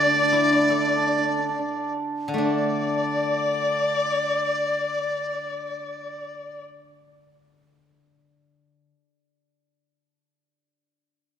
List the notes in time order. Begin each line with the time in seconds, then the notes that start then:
Already playing: D3 A3 D4 E4 G4 D5
0.06 D4
0.16 D4
0.23 D4
0.32 D4 E4
0.43 D4
0.51 D4
0.59 D4
0.69 D4 A4
0.78 D4
0.88 D4
0.97 D4
1.06 D4
1.18 D4
1.29 D4
1.39 D4
1.49 D4
1.59 D4
2.28 D3
2.34 A3 D4
2.38 D4 D5